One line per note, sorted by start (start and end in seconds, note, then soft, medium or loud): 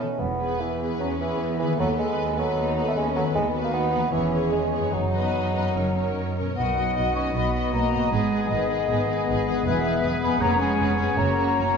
0.00 0.12 B2 soft
0.00 1.72 E3 soft
0.00 0.21 C#4 soft
0.00 0.17 D#4 soft
0.00 3.24 B4 soft
0.07 1.65 B3 soft
0.11 1.76 E4 soft
0.16 0.54 E1 soft
0.16 0.55 E2 soft
0.16 0.62 B3 medium
0.16 1.78 G#4 soft
0.40 0.79 B3 soft
0.40 0.79 G#4 soft
0.40 0.80 B4 soft
0.60 0.95 E2 soft
0.60 0.99 E3 soft
0.80 1.19 B3 soft
0.80 1.18 G#4 soft
0.80 1.19 B4 soft
1.00 1.35 E2 soft
1.00 1.09 F#3 soft
1.00 1.37 C#4 soft
1.19 1.58 E3 soft
1.19 1.58 B3 soft
1.19 1.58 G#4 soft
1.19 1.58 B4 soft
1.39 1.74 E2 soft
1.39 2.58 B3 soft
1.59 3.17 D#3 soft
1.59 1.78 E3 soft
1.59 1.77 B3 soft
1.59 1.78 G#4 soft
1.59 1.78 B4 soft
1.67 3.21 B3 soft
1.71 3.26 F#4 soft
1.76 2.14 D#2 soft
1.76 2.12 D#2 soft
1.76 1.98 B3 soft
1.76 3.35 A4 soft
1.76 1.98 A4 soft
1.76 1.96 B4 soft
1.80 1.88 F#3 medium
1.97 2.37 G#3 medium
1.97 2.38 B3 soft
1.97 2.38 A4 soft
1.97 2.36 B4 soft
2.19 2.53 D#2 soft
2.37 2.86 F#3 medium
2.37 2.77 B3 soft
2.37 2.77 A4 soft
2.37 2.75 B4 soft
2.57 2.92 D#2 medium
2.57 2.96 D#4 soft
2.77 3.15 B3 soft
2.77 3.15 A4 soft
2.77 3.13 B4 soft
2.88 2.92 A3 medium
2.96 3.30 D#2 medium
2.96 3.05 G#3 medium
2.96 3.34 C#4 medium
3.14 4.06 D#3 soft
3.14 3.24 F#3 medium
3.14 3.34 B3 soft
3.14 3.34 A4 soft
3.14 3.34 B4 soft
3.22 3.99 B3 soft
3.27 4.10 F#4 soft
3.32 3.67 D#2 soft
3.32 3.69 D#2 soft
3.32 3.48 G#3 medium
3.32 3.72 B3 soft
3.32 5.76 B4 soft
3.53 3.91 B3 soft
3.53 3.91 F#4 soft
3.53 3.90 B4 soft
3.64 3.73 A#3 soft
3.72 4.08 D#2 soft
3.72 4.11 B3 medium
3.72 4.11 D#4 soft
3.92 4.11 B3 soft
3.92 4.12 F#4 soft
3.92 4.11 B4 soft
3.96 4.87 E3 soft
4.00 4.80 B3 soft
4.05 4.91 G#4 soft
4.09 4.46 E1 soft
4.09 4.48 E2 soft
4.09 4.51 E3 medium
4.09 4.31 B3 soft
4.09 4.92 C#4 soft
4.09 4.31 G#4 soft
4.09 4.93 C#5 soft
4.09 4.32 C#5 soft
4.32 4.72 B3 soft
4.32 4.72 G#4 soft
4.32 4.72 C#5 soft
4.52 4.89 E2 soft
4.52 4.94 G#3 soft
4.73 5.57 F#2 soft
4.73 4.93 B3 soft
4.73 4.93 G#4 soft
4.73 4.93 C#5 soft
4.81 5.71 B3 soft
4.86 5.66 F#4 soft
4.90 5.28 F#1 soft
4.90 5.30 F#2 soft
4.90 6.38 F#3 medium
4.90 6.38 D#4 soft
4.90 5.76 D#5 soft
5.14 5.54 B3 soft
5.14 5.54 B4 soft
5.14 5.54 D#5 soft
5.35 5.71 F#2 soft
5.55 6.51 F#2 soft
5.55 5.75 B3 soft
5.55 5.75 B4 soft
5.55 5.76 D#5 soft
5.62 6.53 A#3 soft
5.76 6.11 F#1 soft
5.76 6.13 F#2 soft
5.76 5.95 C#4 soft
5.76 5.95 A#4 soft
5.76 5.95 C#5 soft
5.96 6.37 C#4 soft
5.96 6.36 A#4 soft
5.96 6.37 C#5 soft
6.18 6.54 F#2 soft
6.38 8.06 B2 soft
6.38 6.58 C#4 soft
6.38 6.58 A#4 soft
6.38 6.58 C#5 soft
6.45 7.97 B3 soft
6.49 8.10 F#4 soft
6.54 6.90 B1 soft
6.54 9.62 B3 soft
6.54 6.75 B3 soft
6.54 9.66 D#5 soft
6.54 7.12 F#5 soft
6.58 7.12 F#3 soft
6.58 8.09 F#3 soft
6.58 8.10 D#4 soft
6.58 8.09 F#4 soft
6.58 6.77 F#4 soft
6.58 6.75 D#5 soft
6.58 9.63 D#5 soft
6.76 6.95 B3 soft
6.76 6.95 F#4 soft
6.76 6.95 D#5 soft
6.96 7.29 B1 soft
6.96 7.13 B3 soft
6.96 7.16 F#4 soft
6.96 7.14 D#5 soft
7.15 7.33 B3 soft
7.15 7.36 C#4 soft
7.15 7.34 F#4 soft
7.15 7.33 D#5 soft
7.15 7.21 C#6 medium
7.34 7.68 B1 soft
7.34 7.52 B3 soft
7.34 7.74 B3 soft
7.34 7.53 F#4 soft
7.34 7.54 D#5 soft
7.34 7.73 B5 soft
7.54 7.71 B3 soft
7.54 7.72 F#4 soft
7.54 7.73 D#5 soft
7.73 8.06 B1 soft
7.73 8.13 A#3 soft
7.73 7.92 B3 soft
7.73 7.92 F#4 soft
7.73 7.92 D#5 soft
7.73 8.12 A#5 soft
7.93 9.58 G#2 soft
7.93 8.11 B3 soft
7.93 8.13 F#4 soft
7.93 8.13 D#5 soft
7.98 9.51 B3 soft
8.03 9.55 G#4 soft
8.07 9.60 B4 soft
8.12 8.45 G#1 soft
8.12 8.50 G#3 soft
8.12 10.37 G#3 soft
8.12 8.30 B3 soft
8.12 10.37 B3 soft
8.12 8.31 G#4 soft
8.12 11.50 G#4 soft
8.12 8.31 B4 soft
8.12 8.50 G#5 medium
8.31 8.49 B3 soft
8.31 8.51 G#4 soft
8.31 8.49 B4 soft
8.49 8.84 G#1 soft
8.49 9.47 D#3 soft
8.49 8.69 B3 soft
8.49 8.69 G#4 soft
8.49 8.69 B4 soft
8.49 9.45 D#5 soft
8.70 8.90 B3 soft
8.70 8.89 G#4 soft
8.70 8.89 B4 soft
8.89 9.22 G#1 medium
8.89 9.08 B3 soft
8.89 9.08 G#4 soft
8.89 9.07 B4 soft
9.08 9.26 B3 soft
9.08 9.29 G#4 soft
9.08 9.28 B4 soft
9.28 9.60 G#1 soft
9.28 9.46 B3 soft
9.28 9.46 G#4 soft
9.28 9.46 B4 soft
9.47 10.33 E2 soft
9.47 9.65 B3 soft
9.47 9.66 G#4 soft
9.47 9.65 B4 soft
9.52 11.12 B3 soft
9.57 10.31 G#4 soft
9.61 11.19 B3 medium
9.61 10.36 B4 soft
9.66 9.98 E1 medium
9.66 10.18 E3 medium
9.66 9.84 B3 soft
9.66 9.84 G#4 medium
9.66 9.82 B4 soft
9.66 10.43 B4 soft
9.66 10.18 E5 medium
9.84 10.02 B3 soft
9.84 10.03 G#4 soft
9.84 10.00 B4 soft
10.02 10.35 E1 medium
10.02 10.20 B3 soft
10.02 10.20 G#4 soft
10.02 10.21 B4 soft
10.22 11.11 F2 soft
10.22 10.40 B3 soft
10.22 10.40 B3 medium
10.22 10.40 G#4 soft
10.22 10.40 B4 soft
10.22 10.41 B5 medium
10.28 11.03 C#4 soft
10.32 11.15 G#4 soft
10.41 10.73 F1 medium
10.41 10.60 A#3 medium
10.41 11.18 B3 soft
10.41 10.58 C#4 soft
10.41 11.77 C#4 soft
10.41 10.58 G#4 soft
10.41 10.58 B4 soft
10.41 11.77 C#5 medium
10.41 10.59 A#5 medium
10.59 10.97 G#3 medium
10.59 10.78 C#4 soft
10.59 10.78 G#4 soft
10.59 10.77 B4 soft
10.59 10.97 G#5 medium
10.78 11.12 F1 soft
10.78 10.98 C#4 soft
10.78 10.97 G#4 soft
10.78 10.96 B4 soft
10.97 11.77 F#2 soft
10.97 11.06 G#3 soft
10.97 11.16 C#4 soft
10.97 11.18 G#4 soft
10.97 11.17 B4 soft
10.97 11.17 G#5 medium
11.04 11.77 C#4 soft
11.09 11.77 F#4 soft
11.14 11.51 F#1 soft
11.14 11.77 F#3 soft
11.14 11.77 A#3 soft
11.14 11.37 C#4 soft
11.14 11.77 C#5 soft
11.14 11.37 C#5 soft
11.14 11.77 A#5 medium
11.18 11.77 A#3 medium
11.18 11.36 F#4 soft
11.38 11.57 C#4 soft
11.38 11.57 F#4 soft
11.38 11.56 C#5 soft
11.57 11.77 F#1 soft
11.57 11.77 C#4 soft
11.57 11.76 F#4 soft
11.57 11.77 C#5 soft